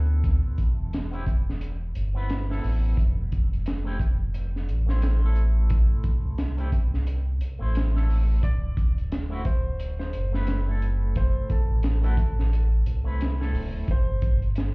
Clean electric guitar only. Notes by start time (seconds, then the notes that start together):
Already playing: B3 C4 E4 A4
1.12 B3 C4 E4 G4
2.14 B3 C4 E4 B4
2.49 B3 C4 E4 A4
3.84 A3 C4 E4 G4
4.86 A3 C4 E4 C5
5.19 A3 C4
5.24 E4 A4
6.57 A3 C4 E4 G4
7.59 A3 C4 E4 C5
7.93 A3 C4 E4 A4
9.30 A3 C4 E4 F#4
10.32 A3 C4 E4 B4
10.64 A3 C4
10.69 E4 A4
12.02 A3 C4 E4 F#4
13.04 A3 C4 E4 B4
13.38 A3 C4 E4 A4